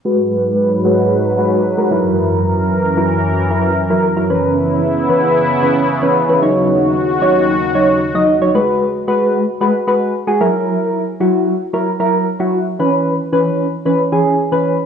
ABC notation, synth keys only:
X:1
M:4/4
L:1/16
Q:1/4=113
K:G#m
V:1 name="Synth keys"
[G,FB]4 z2 [G,FB]3 z [G,FB]2 z [G,FA] [F,EA]2- | [F,EA]4 z2 [F,EA]3 z [F,EA]2 z [F,EA] z [F,EA] | [E,CB]4 z2 [E,CB]3 z [E,CB]2 z [E,CB] z [E,CB] | [F,Dc]4 z2 [F,Dc]3 z [F,Dc]2 z [F,Dd] z [F,Dc] |
[G,FB]3 z [G,FB]3 z [G,FB] z [G,FB]2 z [G,FG] [F,EA]2- | [F,EA]3 z [F,EF]3 z [F,EA] z [F,EA]2 z [F,EF]2 z | [E,CB]3 z [E,CB]3 z [E,CB] z [E,CG]2 z [E,CB]2 z |]